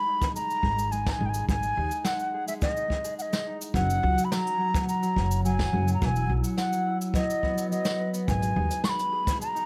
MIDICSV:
0, 0, Header, 1, 5, 480
1, 0, Start_track
1, 0, Key_signature, 5, "minor"
1, 0, Tempo, 566038
1, 1260, Time_signature, 4, 2, 24, 8
1, 8189, End_track
2, 0, Start_track
2, 0, Title_t, "Flute"
2, 0, Program_c, 0, 73
2, 0, Note_on_c, 0, 83, 98
2, 267, Note_off_c, 0, 83, 0
2, 300, Note_on_c, 0, 82, 104
2, 778, Note_on_c, 0, 80, 87
2, 790, Note_off_c, 0, 82, 0
2, 922, Note_on_c, 0, 82, 80
2, 930, Note_off_c, 0, 80, 0
2, 953, Note_on_c, 0, 80, 87
2, 962, Note_off_c, 0, 82, 0
2, 1066, Note_on_c, 0, 79, 80
2, 1074, Note_off_c, 0, 80, 0
2, 1097, Note_on_c, 0, 80, 87
2, 1106, Note_off_c, 0, 79, 0
2, 1257, Note_off_c, 0, 80, 0
2, 1262, Note_on_c, 0, 80, 107
2, 1741, Note_on_c, 0, 78, 90
2, 1754, Note_off_c, 0, 80, 0
2, 2096, Note_off_c, 0, 78, 0
2, 2101, Note_on_c, 0, 76, 85
2, 2152, Note_off_c, 0, 76, 0
2, 2221, Note_on_c, 0, 75, 93
2, 2667, Note_off_c, 0, 75, 0
2, 2700, Note_on_c, 0, 78, 74
2, 2728, Note_on_c, 0, 75, 81
2, 2737, Note_off_c, 0, 78, 0
2, 3035, Note_off_c, 0, 75, 0
2, 3178, Note_on_c, 0, 78, 102
2, 3601, Note_on_c, 0, 83, 64
2, 3614, Note_off_c, 0, 78, 0
2, 3657, Note_on_c, 0, 82, 100
2, 3670, Note_off_c, 0, 83, 0
2, 4135, Note_off_c, 0, 82, 0
2, 4140, Note_on_c, 0, 82, 96
2, 4586, Note_off_c, 0, 82, 0
2, 4621, Note_on_c, 0, 80, 97
2, 5012, Note_off_c, 0, 80, 0
2, 5041, Note_on_c, 0, 82, 69
2, 5097, Note_off_c, 0, 82, 0
2, 5097, Note_on_c, 0, 82, 98
2, 5133, Note_on_c, 0, 80, 107
2, 5142, Note_off_c, 0, 82, 0
2, 5363, Note_off_c, 0, 80, 0
2, 5580, Note_on_c, 0, 78, 85
2, 5915, Note_off_c, 0, 78, 0
2, 6059, Note_on_c, 0, 75, 87
2, 6506, Note_off_c, 0, 75, 0
2, 6537, Note_on_c, 0, 75, 80
2, 6873, Note_off_c, 0, 75, 0
2, 7020, Note_on_c, 0, 80, 101
2, 7500, Note_on_c, 0, 85, 84
2, 7512, Note_off_c, 0, 80, 0
2, 7541, Note_on_c, 0, 83, 91
2, 7549, Note_off_c, 0, 85, 0
2, 7976, Note_off_c, 0, 83, 0
2, 7981, Note_on_c, 0, 82, 94
2, 8189, Note_off_c, 0, 82, 0
2, 8189, End_track
3, 0, Start_track
3, 0, Title_t, "Harp"
3, 0, Program_c, 1, 46
3, 0, Note_on_c, 1, 56, 65
3, 0, Note_on_c, 1, 68, 65
3, 60, Note_on_c, 1, 63, 64
3, 290, Note_off_c, 1, 56, 0
3, 301, Note_on_c, 1, 56, 93
3, 539, Note_off_c, 1, 68, 0
3, 542, Note_on_c, 1, 68, 70
3, 653, Note_off_c, 1, 56, 0
3, 663, Note_on_c, 1, 56, 68
3, 774, Note_off_c, 1, 56, 0
3, 784, Note_on_c, 1, 56, 86
3, 900, Note_off_c, 1, 63, 0
3, 904, Note_on_c, 1, 63, 70
3, 1010, Note_off_c, 1, 56, 0
3, 1021, Note_on_c, 1, 56, 68
3, 1138, Note_off_c, 1, 68, 0
3, 1142, Note_on_c, 1, 68, 69
3, 1372, Note_off_c, 1, 56, 0
3, 1382, Note_on_c, 1, 56, 61
3, 1500, Note_off_c, 1, 63, 0
3, 1503, Note_on_c, 1, 63, 69
3, 1733, Note_off_c, 1, 56, 0
3, 1743, Note_on_c, 1, 56, 87
3, 1981, Note_off_c, 1, 68, 0
3, 1984, Note_on_c, 1, 68, 72
3, 2094, Note_off_c, 1, 56, 0
3, 2104, Note_on_c, 1, 56, 77
3, 2211, Note_off_c, 1, 56, 0
3, 2222, Note_on_c, 1, 56, 88
3, 2339, Note_off_c, 1, 63, 0
3, 2342, Note_on_c, 1, 63, 64
3, 2450, Note_off_c, 1, 56, 0
3, 2460, Note_on_c, 1, 56, 72
3, 2578, Note_off_c, 1, 68, 0
3, 2581, Note_on_c, 1, 68, 67
3, 2808, Note_off_c, 1, 56, 0
3, 2818, Note_on_c, 1, 56, 70
3, 2936, Note_off_c, 1, 63, 0
3, 2939, Note_on_c, 1, 63, 71
3, 3177, Note_on_c, 1, 54, 87
3, 3223, Note_off_c, 1, 56, 0
3, 3419, Note_on_c, 1, 66, 72
3, 3530, Note_off_c, 1, 54, 0
3, 3540, Note_on_c, 1, 54, 67
3, 3652, Note_off_c, 1, 54, 0
3, 3662, Note_on_c, 1, 54, 94
3, 3781, Note_on_c, 1, 61, 66
3, 3890, Note_off_c, 1, 54, 0
3, 3901, Note_on_c, 1, 54, 69
3, 4016, Note_off_c, 1, 66, 0
3, 4019, Note_on_c, 1, 66, 75
3, 4250, Note_off_c, 1, 54, 0
3, 4260, Note_on_c, 1, 54, 71
3, 4377, Note_off_c, 1, 61, 0
3, 4380, Note_on_c, 1, 61, 68
3, 4509, Note_off_c, 1, 68, 0
3, 4610, Note_off_c, 1, 54, 0
3, 4620, Note_on_c, 1, 54, 94
3, 4860, Note_off_c, 1, 66, 0
3, 4863, Note_on_c, 1, 66, 74
3, 4971, Note_off_c, 1, 54, 0
3, 4981, Note_on_c, 1, 54, 80
3, 5090, Note_off_c, 1, 54, 0
3, 5100, Note_on_c, 1, 54, 93
3, 5220, Note_on_c, 1, 64, 68
3, 5270, Note_off_c, 1, 63, 0
3, 5328, Note_off_c, 1, 54, 0
3, 5338, Note_on_c, 1, 54, 69
3, 5455, Note_off_c, 1, 66, 0
3, 5459, Note_on_c, 1, 66, 71
3, 5691, Note_off_c, 1, 54, 0
3, 5701, Note_on_c, 1, 54, 73
3, 5818, Note_off_c, 1, 64, 0
3, 5821, Note_on_c, 1, 64, 69
3, 6051, Note_off_c, 1, 54, 0
3, 6062, Note_on_c, 1, 54, 90
3, 6300, Note_on_c, 1, 59, 95
3, 6409, Note_off_c, 1, 54, 0
3, 6420, Note_on_c, 1, 54, 70
3, 6528, Note_off_c, 1, 54, 0
3, 6538, Note_on_c, 1, 54, 75
3, 6655, Note_off_c, 1, 66, 0
3, 6658, Note_on_c, 1, 66, 66
3, 6778, Note_on_c, 1, 71, 74
3, 6837, Note_off_c, 1, 61, 0
3, 6893, Note_off_c, 1, 59, 0
3, 6896, Note_on_c, 1, 59, 72
3, 7063, Note_off_c, 1, 54, 0
3, 7137, Note_on_c, 1, 56, 64
3, 7257, Note_on_c, 1, 63, 67
3, 7308, Note_off_c, 1, 64, 0
3, 7487, Note_off_c, 1, 56, 0
3, 7497, Note_on_c, 1, 56, 97
3, 7738, Note_on_c, 1, 68, 69
3, 7848, Note_off_c, 1, 56, 0
3, 7858, Note_on_c, 1, 56, 73
3, 7965, Note_off_c, 1, 56, 0
3, 7976, Note_on_c, 1, 56, 92
3, 8093, Note_off_c, 1, 63, 0
3, 8096, Note_on_c, 1, 63, 68
3, 8189, Note_off_c, 1, 56, 0
3, 8189, Note_off_c, 1, 59, 0
3, 8189, Note_off_c, 1, 63, 0
3, 8189, Note_off_c, 1, 66, 0
3, 8189, Note_off_c, 1, 68, 0
3, 8189, Note_off_c, 1, 71, 0
3, 8189, End_track
4, 0, Start_track
4, 0, Title_t, "Upright bass"
4, 0, Program_c, 2, 32
4, 534, Note_on_c, 2, 32, 80
4, 971, Note_off_c, 2, 32, 0
4, 1021, Note_on_c, 2, 32, 88
4, 1202, Note_off_c, 2, 32, 0
4, 1259, Note_on_c, 2, 32, 92
4, 1441, Note_off_c, 2, 32, 0
4, 1502, Note_on_c, 2, 39, 85
4, 1592, Note_off_c, 2, 39, 0
4, 3172, Note_on_c, 2, 30, 95
4, 3358, Note_off_c, 2, 30, 0
4, 3419, Note_on_c, 2, 37, 97
4, 3510, Note_off_c, 2, 37, 0
4, 4379, Note_on_c, 2, 30, 75
4, 4813, Note_off_c, 2, 30, 0
4, 4859, Note_on_c, 2, 30, 91
4, 5041, Note_off_c, 2, 30, 0
4, 5104, Note_on_c, 2, 28, 99
4, 5284, Note_off_c, 2, 28, 0
4, 5338, Note_on_c, 2, 35, 89
4, 5430, Note_off_c, 2, 35, 0
4, 7022, Note_on_c, 2, 32, 101
4, 7203, Note_off_c, 2, 32, 0
4, 7260, Note_on_c, 2, 39, 94
4, 7351, Note_off_c, 2, 39, 0
4, 8189, End_track
5, 0, Start_track
5, 0, Title_t, "Drums"
5, 183, Note_on_c, 9, 36, 103
5, 185, Note_on_c, 9, 69, 64
5, 268, Note_off_c, 9, 36, 0
5, 270, Note_off_c, 9, 69, 0
5, 306, Note_on_c, 9, 69, 61
5, 391, Note_off_c, 9, 69, 0
5, 428, Note_on_c, 9, 69, 45
5, 513, Note_off_c, 9, 69, 0
5, 535, Note_on_c, 9, 36, 62
5, 620, Note_off_c, 9, 36, 0
5, 666, Note_on_c, 9, 69, 67
5, 751, Note_off_c, 9, 69, 0
5, 782, Note_on_c, 9, 69, 54
5, 867, Note_off_c, 9, 69, 0
5, 902, Note_on_c, 9, 38, 81
5, 904, Note_on_c, 9, 36, 99
5, 907, Note_on_c, 9, 69, 42
5, 986, Note_off_c, 9, 38, 0
5, 989, Note_off_c, 9, 36, 0
5, 992, Note_off_c, 9, 69, 0
5, 1136, Note_on_c, 9, 69, 77
5, 1221, Note_off_c, 9, 69, 0
5, 1260, Note_on_c, 9, 36, 111
5, 1264, Note_on_c, 9, 69, 62
5, 1345, Note_off_c, 9, 36, 0
5, 1349, Note_off_c, 9, 69, 0
5, 1382, Note_on_c, 9, 69, 42
5, 1466, Note_off_c, 9, 69, 0
5, 1622, Note_on_c, 9, 69, 72
5, 1706, Note_off_c, 9, 69, 0
5, 1734, Note_on_c, 9, 38, 77
5, 1743, Note_on_c, 9, 69, 67
5, 1819, Note_off_c, 9, 38, 0
5, 1828, Note_off_c, 9, 69, 0
5, 1862, Note_on_c, 9, 69, 43
5, 1946, Note_off_c, 9, 69, 0
5, 2104, Note_on_c, 9, 69, 70
5, 2188, Note_off_c, 9, 69, 0
5, 2219, Note_on_c, 9, 69, 66
5, 2222, Note_on_c, 9, 36, 108
5, 2303, Note_off_c, 9, 69, 0
5, 2307, Note_off_c, 9, 36, 0
5, 2346, Note_on_c, 9, 69, 43
5, 2431, Note_off_c, 9, 69, 0
5, 2460, Note_on_c, 9, 36, 54
5, 2544, Note_off_c, 9, 36, 0
5, 2583, Note_on_c, 9, 69, 69
5, 2667, Note_off_c, 9, 69, 0
5, 2706, Note_on_c, 9, 69, 64
5, 2791, Note_off_c, 9, 69, 0
5, 2823, Note_on_c, 9, 38, 68
5, 2823, Note_on_c, 9, 69, 49
5, 2907, Note_off_c, 9, 69, 0
5, 2908, Note_off_c, 9, 38, 0
5, 3065, Note_on_c, 9, 69, 81
5, 3149, Note_off_c, 9, 69, 0
5, 3172, Note_on_c, 9, 36, 106
5, 3185, Note_on_c, 9, 69, 60
5, 3257, Note_off_c, 9, 36, 0
5, 3269, Note_off_c, 9, 69, 0
5, 3308, Note_on_c, 9, 69, 51
5, 3393, Note_off_c, 9, 69, 0
5, 3547, Note_on_c, 9, 69, 75
5, 3632, Note_off_c, 9, 69, 0
5, 3661, Note_on_c, 9, 38, 71
5, 3666, Note_on_c, 9, 69, 62
5, 3745, Note_off_c, 9, 38, 0
5, 3751, Note_off_c, 9, 69, 0
5, 3791, Note_on_c, 9, 69, 43
5, 3875, Note_off_c, 9, 69, 0
5, 4024, Note_on_c, 9, 36, 108
5, 4030, Note_on_c, 9, 69, 69
5, 4108, Note_off_c, 9, 36, 0
5, 4115, Note_off_c, 9, 69, 0
5, 4145, Note_on_c, 9, 69, 61
5, 4230, Note_off_c, 9, 69, 0
5, 4265, Note_on_c, 9, 69, 49
5, 4350, Note_off_c, 9, 69, 0
5, 4379, Note_on_c, 9, 36, 58
5, 4464, Note_off_c, 9, 36, 0
5, 4504, Note_on_c, 9, 69, 85
5, 4589, Note_off_c, 9, 69, 0
5, 4625, Note_on_c, 9, 69, 71
5, 4710, Note_off_c, 9, 69, 0
5, 4742, Note_on_c, 9, 36, 92
5, 4743, Note_on_c, 9, 38, 73
5, 4827, Note_off_c, 9, 36, 0
5, 4828, Note_off_c, 9, 38, 0
5, 4985, Note_on_c, 9, 69, 73
5, 5070, Note_off_c, 9, 69, 0
5, 5104, Note_on_c, 9, 36, 121
5, 5104, Note_on_c, 9, 69, 54
5, 5188, Note_off_c, 9, 69, 0
5, 5189, Note_off_c, 9, 36, 0
5, 5223, Note_on_c, 9, 69, 46
5, 5307, Note_off_c, 9, 69, 0
5, 5461, Note_on_c, 9, 69, 80
5, 5546, Note_off_c, 9, 69, 0
5, 5575, Note_on_c, 9, 38, 62
5, 5581, Note_on_c, 9, 69, 57
5, 5660, Note_off_c, 9, 38, 0
5, 5666, Note_off_c, 9, 69, 0
5, 5705, Note_on_c, 9, 69, 44
5, 5790, Note_off_c, 9, 69, 0
5, 5948, Note_on_c, 9, 69, 71
5, 6032, Note_off_c, 9, 69, 0
5, 6053, Note_on_c, 9, 36, 96
5, 6064, Note_on_c, 9, 69, 64
5, 6137, Note_off_c, 9, 36, 0
5, 6149, Note_off_c, 9, 69, 0
5, 6192, Note_on_c, 9, 69, 50
5, 6277, Note_off_c, 9, 69, 0
5, 6302, Note_on_c, 9, 36, 55
5, 6386, Note_off_c, 9, 36, 0
5, 6428, Note_on_c, 9, 69, 85
5, 6512, Note_off_c, 9, 69, 0
5, 6548, Note_on_c, 9, 69, 59
5, 6633, Note_off_c, 9, 69, 0
5, 6656, Note_on_c, 9, 69, 51
5, 6657, Note_on_c, 9, 38, 74
5, 6741, Note_off_c, 9, 69, 0
5, 6742, Note_off_c, 9, 38, 0
5, 6903, Note_on_c, 9, 69, 74
5, 6988, Note_off_c, 9, 69, 0
5, 7022, Note_on_c, 9, 36, 118
5, 7026, Note_on_c, 9, 69, 68
5, 7107, Note_off_c, 9, 36, 0
5, 7110, Note_off_c, 9, 69, 0
5, 7140, Note_on_c, 9, 42, 49
5, 7146, Note_on_c, 9, 69, 50
5, 7225, Note_off_c, 9, 42, 0
5, 7231, Note_off_c, 9, 69, 0
5, 7381, Note_on_c, 9, 42, 67
5, 7384, Note_on_c, 9, 69, 73
5, 7466, Note_off_c, 9, 42, 0
5, 7469, Note_off_c, 9, 69, 0
5, 7493, Note_on_c, 9, 38, 73
5, 7505, Note_on_c, 9, 69, 64
5, 7578, Note_off_c, 9, 38, 0
5, 7589, Note_off_c, 9, 69, 0
5, 7623, Note_on_c, 9, 42, 47
5, 7626, Note_on_c, 9, 69, 45
5, 7708, Note_off_c, 9, 42, 0
5, 7711, Note_off_c, 9, 69, 0
5, 7859, Note_on_c, 9, 42, 60
5, 7862, Note_on_c, 9, 36, 93
5, 7867, Note_on_c, 9, 69, 77
5, 7944, Note_off_c, 9, 42, 0
5, 7947, Note_off_c, 9, 36, 0
5, 7952, Note_off_c, 9, 69, 0
5, 7986, Note_on_c, 9, 69, 61
5, 8071, Note_off_c, 9, 69, 0
5, 8109, Note_on_c, 9, 69, 43
5, 8189, Note_off_c, 9, 69, 0
5, 8189, End_track
0, 0, End_of_file